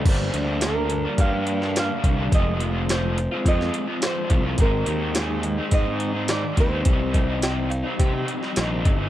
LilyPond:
<<
  \new Staff \with { instrumentName = "Synth bell" } { \time 4/4 \key c \minor \tempo 4 = 106 r1 | r1 | r1 | r8 ees''8 g''8 f''8 g''4 ees''4 | }
  \new Staff \with { instrumentName = "Nylon-string guitar" } { \time 4/4 \key c \minor c''4 bes'4 f''4 f''4 | ees''4 c''4 ees''4 c''8. r16 | bes'4 aes'4 ees''4 d''8 c''8~ | c''2. r4 | }
  \new Staff \with { instrumentName = "Overdriven electric guitar" } { \time 4/4 \key c \minor <g, d g bes d'>8 <d g bes d'>8 <g, d g bes d'>16 <g bes d'>8 <g bes d'>8 <g bes d'>8 <g bes d'>16 <g, d g bes d'>16 <g bes d'>16 <d g bes d'>16 <g bes d'>16 | <f aes c' f'>8 <f aes c' f'>8 <f aes c' f'>16 <aes c' f'>8 <aes c' f'>8 <aes c' f'>8 <aes c' f'>16 <f aes c' f'>16 <aes c' f'>16 <f aes c' f'>16 <aes c' f'>16 | <aes, ees aes c' ees'>8 <ees aes c' ees'>8 <aes, ees aes c' ees'>16 <aes c' ees'>8 <aes c' ees'>8 <aes c' ees'>8 <aes c' ees'>16 <aes, ees aes c' ees'>16 <aes c' ees'>16 <ees aes c' ees'>16 <aes c' ees'>16 | <c g c' ees'>8 <c g c' ees'>8 <c g c' ees'>16 <g c' ees'>8 <g c' ees'>8 <g c' ees'>8 <g c' ees'>16 <c g c' ees'>16 <g c' ees'>16 <c g c' ees'>16 <g c' ees'>16 | }
  \new Staff \with { instrumentName = "Picked electric bass" } { \clef bass \time 4/4 \key c \minor g,,8 d,4. g,4. c,8 | f,,2 f,8 r4 c,8 | aes,,8 ees,4. aes,4. ees,8 | c,2 c8 r8 bes,,8 g,,8 | }
  \new DrumStaff \with { instrumentName = "Drums" } \drummode { \time 4/4 <cymc bd>8 hh8 <hh sn tamb>8 hh8 <hh bd>8 hh16 sn16 <hh sn tamb>8 <hh bd>8 | <hh bd>8 hh8 <hh sn tamb>8 hh8 <hh bd>16 sn16 hh8 <hh sn tamb>8 <hh bd>8 | <hh bd>8 hh8 <hh sn tamb>8 hh8 <hh bd>8 hh8 <hh sn tamb>8 <hh bd>8 | <hh bd>8 <hh bd>8 <hh sn tamb>8 hh8 <hh bd>8 hh16 sn16 <hh sn tamb>8 <hh bd>8 | }
>>